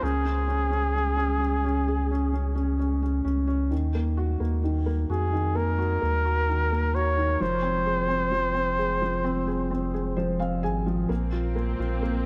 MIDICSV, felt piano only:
0, 0, Header, 1, 2, 480
1, 0, Start_track
1, 0, Tempo, 923077
1, 11, Time_signature, 4, 2, 24, 8
1, 6375, End_track
2, 0, Start_track
2, 0, Title_t, "Felt piano"
2, 0, Program_c, 0, 0
2, 0, Control_c, 0, 64, 127
2, 3, Note_on_c, 0, 61, 52
2, 17, Control_c, 0, 64, 0
2, 118, Control_c, 0, 64, 127
2, 122, Note_off_c, 0, 61, 0
2, 130, Note_on_c, 0, 61, 35
2, 239, Note_off_c, 0, 61, 0
2, 247, Note_on_c, 0, 61, 43
2, 356, Note_off_c, 0, 61, 0
2, 364, Note_on_c, 0, 61, 43
2, 483, Note_off_c, 0, 61, 0
2, 491, Note_on_c, 0, 61, 42
2, 598, Note_off_c, 0, 61, 0
2, 606, Note_on_c, 0, 61, 46
2, 720, Note_off_c, 0, 61, 0
2, 728, Note_on_c, 0, 61, 39
2, 846, Note_off_c, 0, 61, 0
2, 853, Note_on_c, 0, 61, 48
2, 977, Note_on_c, 0, 68, 54
2, 1089, Note_off_c, 0, 61, 0
2, 1097, Note_on_c, 0, 61, 39
2, 1205, Note_off_c, 0, 61, 0
2, 1212, Note_on_c, 0, 61, 43
2, 1319, Note_off_c, 0, 61, 0
2, 1327, Note_on_c, 0, 61, 43
2, 1443, Note_off_c, 0, 61, 0
2, 1451, Note_on_c, 0, 61, 46
2, 1565, Note_off_c, 0, 61, 0
2, 1572, Note_on_c, 0, 61, 42
2, 1679, Note_off_c, 0, 61, 0
2, 1687, Note_on_c, 0, 61, 45
2, 1797, Note_off_c, 0, 61, 0
2, 1805, Note_on_c, 0, 61, 46
2, 1914, Note_off_c, 0, 68, 0
2, 1925, Note_off_c, 0, 61, 0
2, 1928, Note_on_c, 0, 51, 50
2, 1939, Control_c, 0, 64, 0
2, 2032, Control_c, 0, 64, 127
2, 2053, Note_on_c, 0, 58, 39
2, 2170, Note_on_c, 0, 66, 46
2, 2281, Note_off_c, 0, 58, 0
2, 2289, Note_on_c, 0, 58, 41
2, 2403, Note_off_c, 0, 51, 0
2, 2411, Note_on_c, 0, 51, 46
2, 2520, Note_off_c, 0, 58, 0
2, 2528, Note_on_c, 0, 58, 41
2, 2643, Note_off_c, 0, 66, 0
2, 2650, Note_on_c, 0, 66, 37
2, 2761, Note_off_c, 0, 51, 0
2, 2769, Note_on_c, 0, 51, 51
2, 2880, Note_off_c, 0, 58, 0
2, 2888, Note_on_c, 0, 58, 59
2, 2999, Note_off_c, 0, 66, 0
2, 3006, Note_on_c, 0, 66, 40
2, 3120, Note_off_c, 0, 58, 0
2, 3128, Note_on_c, 0, 58, 44
2, 3243, Note_off_c, 0, 66, 0
2, 3251, Note_on_c, 0, 66, 40
2, 3365, Note_off_c, 0, 51, 0
2, 3373, Note_on_c, 0, 51, 46
2, 3482, Note_off_c, 0, 58, 0
2, 3490, Note_on_c, 0, 58, 39
2, 3603, Note_off_c, 0, 66, 0
2, 3611, Note_on_c, 0, 66, 45
2, 3720, Note_off_c, 0, 51, 0
2, 3728, Note_on_c, 0, 51, 44
2, 3840, Note_off_c, 0, 58, 0
2, 3844, Note_off_c, 0, 66, 0
2, 3846, Note_off_c, 0, 51, 0
2, 3849, Note_on_c, 0, 53, 58
2, 3859, Control_c, 0, 64, 0
2, 3934, Control_c, 0, 64, 127
2, 3962, Note_on_c, 0, 60, 41
2, 4087, Note_on_c, 0, 68, 43
2, 4193, Note_off_c, 0, 60, 0
2, 4201, Note_on_c, 0, 60, 42
2, 4314, Note_off_c, 0, 53, 0
2, 4322, Note_on_c, 0, 53, 47
2, 4434, Note_off_c, 0, 60, 0
2, 4442, Note_on_c, 0, 60, 41
2, 4559, Note_off_c, 0, 68, 0
2, 4567, Note_on_c, 0, 68, 38
2, 4679, Note_off_c, 0, 53, 0
2, 4687, Note_on_c, 0, 53, 44
2, 4798, Note_off_c, 0, 60, 0
2, 4806, Note_on_c, 0, 60, 57
2, 4918, Note_off_c, 0, 68, 0
2, 4926, Note_on_c, 0, 68, 40
2, 5040, Note_off_c, 0, 60, 0
2, 5048, Note_on_c, 0, 60, 45
2, 5160, Note_off_c, 0, 68, 0
2, 5168, Note_on_c, 0, 68, 40
2, 5279, Note_off_c, 0, 53, 0
2, 5286, Note_on_c, 0, 72, 50
2, 5287, Note_on_c, 0, 53, 42
2, 5398, Note_off_c, 0, 60, 0
2, 5400, Note_off_c, 0, 72, 0
2, 5406, Note_on_c, 0, 60, 42
2, 5406, Note_on_c, 0, 77, 52
2, 5520, Note_off_c, 0, 77, 0
2, 5521, Note_off_c, 0, 68, 0
2, 5528, Note_on_c, 0, 80, 53
2, 5529, Note_on_c, 0, 68, 40
2, 5641, Note_off_c, 0, 53, 0
2, 5649, Note_on_c, 0, 53, 44
2, 5753, Note_off_c, 0, 80, 0
2, 5758, Note_off_c, 0, 60, 0
2, 5763, Note_off_c, 0, 68, 0
2, 5766, Note_off_c, 0, 53, 0
2, 5767, Note_on_c, 0, 58, 52
2, 5779, Control_c, 0, 64, 0
2, 5869, Control_c, 0, 64, 127
2, 5888, Note_on_c, 0, 65, 42
2, 6001, Note_off_c, 0, 58, 0
2, 6009, Note_on_c, 0, 58, 45
2, 6123, Note_off_c, 0, 65, 0
2, 6131, Note_on_c, 0, 65, 40
2, 6244, Note_off_c, 0, 58, 0
2, 6252, Note_on_c, 0, 58, 43
2, 6364, Note_off_c, 0, 65, 0
2, 6375, Note_off_c, 0, 58, 0
2, 6375, End_track
0, 0, End_of_file